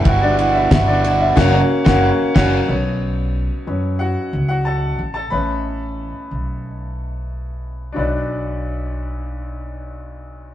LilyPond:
<<
  \new Staff \with { instrumentName = "Upright piano" } { \time 4/4 \key b \minor \tempo 4 = 91 e''16 <d' d''>8 <e' e''>16 <e' e''>16 <d' d''>8 <e' e''>16 <ais cis' fis' fis''>8 r16 <ais cis' fis' fis''>8 r16 <ais cis' fis' fis''>8 | cis''2 <fis' fis''>8. <fis' fis''>16 <a' a''>8. <a' a''>16 | <b' b''>2. r4 | <d' fis' b' d''>1 | }
  \new Staff \with { instrumentName = "Upright piano" } { \time 4/4 \key b \minor <g e' fis'>2 r2 | <fis b cis'>4. <fis b cis'>8 r2 | <a b cis'>1 | b,,1 | }
  \new Staff \with { instrumentName = "Overdriven electric guitar" } { \time 4/4 \key b \minor <g b e' fis'>8 <b e' fis'>8 <g b e' fis'>8 <b e' fis'>8 <fis ais cis' fis'>8 r16 <fis ais cis' fis'>8 r16 <fis ais cis' fis'>8 | r1 | r1 | r1 | }
  \new Staff \with { instrumentName = "Upright bass" } { \clef bass \time 4/4 \key b \minor g,,4 g,,4 fis,,8 r16 fis,,8 r16 fis,,8 | b,,4~ b,,16 r16 fis,8. r16 cis,4 a,,8 | a,,4~ a,,16 r16 b,,2~ b,,8 | b,,1 | }
  \new DrumStaff \with { instrumentName = "Drums" } \drummode { \time 4/4 <bd cymr>8 cymr8 <bd cymr sn>8 cymr8 <cymc bd sn>8. <bd sn>16 r8 <cymc bd sn>8 | r4 r4 r4 r4 | r4 r4 r4 r4 | r4 r4 r4 r4 | }
>>